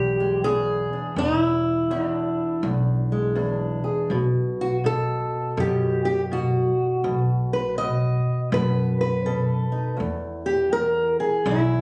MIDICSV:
0, 0, Header, 1, 3, 480
1, 0, Start_track
1, 0, Tempo, 734394
1, 771, Time_signature, 4, 2, 24, 8
1, 7719, End_track
2, 0, Start_track
2, 0, Title_t, "Steel-string acoustic guitar"
2, 0, Program_c, 0, 25
2, 0, Note_on_c, 0, 40, 78
2, 0, Note_on_c, 0, 67, 112
2, 132, Note_on_c, 0, 56, 44
2, 282, Note_off_c, 0, 40, 0
2, 286, Note_off_c, 0, 67, 0
2, 289, Note_on_c, 0, 40, 68
2, 289, Note_on_c, 0, 68, 107
2, 608, Note_on_c, 0, 62, 40
2, 755, Note_off_c, 0, 62, 0
2, 758, Note_off_c, 0, 56, 0
2, 762, Note_off_c, 0, 40, 0
2, 769, Note_on_c, 0, 40, 73
2, 770, Note_off_c, 0, 68, 0
2, 773, Note_on_c, 0, 63, 100
2, 904, Note_off_c, 0, 63, 0
2, 904, Note_on_c, 0, 64, 100
2, 1237, Note_off_c, 0, 40, 0
2, 1244, Note_on_c, 0, 40, 70
2, 1249, Note_on_c, 0, 62, 79
2, 1715, Note_off_c, 0, 40, 0
2, 1723, Note_on_c, 0, 40, 69
2, 1733, Note_off_c, 0, 64, 0
2, 2039, Note_on_c, 0, 56, 46
2, 2184, Note_off_c, 0, 40, 0
2, 2186, Note_off_c, 0, 62, 0
2, 2192, Note_on_c, 0, 40, 63
2, 2195, Note_on_c, 0, 62, 41
2, 2509, Note_on_c, 0, 68, 37
2, 2663, Note_off_c, 0, 62, 0
2, 2666, Note_off_c, 0, 68, 0
2, 2671, Note_off_c, 0, 56, 0
2, 2683, Note_off_c, 0, 40, 0
2, 2686, Note_on_c, 0, 47, 72
2, 3014, Note_on_c, 0, 66, 88
2, 3113, Note_off_c, 0, 66, 0
2, 3162, Note_off_c, 0, 47, 0
2, 3164, Note_on_c, 0, 47, 68
2, 3177, Note_on_c, 0, 69, 105
2, 3642, Note_off_c, 0, 47, 0
2, 3644, Note_on_c, 0, 47, 71
2, 3655, Note_off_c, 0, 69, 0
2, 3661, Note_on_c, 0, 67, 96
2, 3947, Note_off_c, 0, 67, 0
2, 3955, Note_on_c, 0, 67, 88
2, 4060, Note_off_c, 0, 67, 0
2, 4120, Note_off_c, 0, 47, 0
2, 4128, Note_on_c, 0, 47, 72
2, 4135, Note_on_c, 0, 66, 79
2, 4589, Note_off_c, 0, 47, 0
2, 4604, Note_on_c, 0, 47, 78
2, 4920, Note_off_c, 0, 66, 0
2, 4923, Note_on_c, 0, 71, 86
2, 5081, Note_off_c, 0, 47, 0
2, 5081, Note_off_c, 0, 71, 0
2, 5084, Note_on_c, 0, 75, 111
2, 5089, Note_on_c, 0, 47, 67
2, 5565, Note_off_c, 0, 47, 0
2, 5566, Note_off_c, 0, 75, 0
2, 5573, Note_on_c, 0, 47, 71
2, 5581, Note_on_c, 0, 71, 96
2, 5880, Note_off_c, 0, 71, 0
2, 5887, Note_on_c, 0, 71, 89
2, 6043, Note_off_c, 0, 47, 0
2, 6051, Note_on_c, 0, 47, 71
2, 6052, Note_on_c, 0, 69, 76
2, 6353, Note_on_c, 0, 63, 42
2, 6505, Note_off_c, 0, 63, 0
2, 6508, Note_off_c, 0, 47, 0
2, 6514, Note_on_c, 0, 40, 68
2, 6529, Note_off_c, 0, 69, 0
2, 6533, Note_off_c, 0, 71, 0
2, 6836, Note_on_c, 0, 67, 84
2, 7005, Note_off_c, 0, 40, 0
2, 7007, Note_off_c, 0, 67, 0
2, 7008, Note_on_c, 0, 40, 68
2, 7011, Note_on_c, 0, 70, 111
2, 7316, Note_off_c, 0, 70, 0
2, 7319, Note_on_c, 0, 68, 96
2, 7489, Note_off_c, 0, 40, 0
2, 7491, Note_on_c, 0, 40, 70
2, 7492, Note_on_c, 0, 64, 90
2, 7719, Note_off_c, 0, 40, 0
2, 7719, Note_off_c, 0, 64, 0
2, 7719, Note_off_c, 0, 68, 0
2, 7719, End_track
3, 0, Start_track
3, 0, Title_t, "Upright bass"
3, 0, Program_c, 1, 32
3, 0, Note_on_c, 1, 35, 101
3, 546, Note_off_c, 1, 35, 0
3, 760, Note_on_c, 1, 28, 83
3, 1505, Note_off_c, 1, 28, 0
3, 1718, Note_on_c, 1, 35, 96
3, 2464, Note_off_c, 1, 35, 0
3, 2679, Note_on_c, 1, 35, 78
3, 3423, Note_off_c, 1, 35, 0
3, 3642, Note_on_c, 1, 42, 97
3, 4385, Note_off_c, 1, 42, 0
3, 4601, Note_on_c, 1, 35, 84
3, 5343, Note_off_c, 1, 35, 0
3, 5569, Note_on_c, 1, 42, 103
3, 6307, Note_off_c, 1, 42, 0
3, 6535, Note_on_c, 1, 40, 82
3, 7271, Note_off_c, 1, 40, 0
3, 7487, Note_on_c, 1, 35, 96
3, 7719, Note_off_c, 1, 35, 0
3, 7719, End_track
0, 0, End_of_file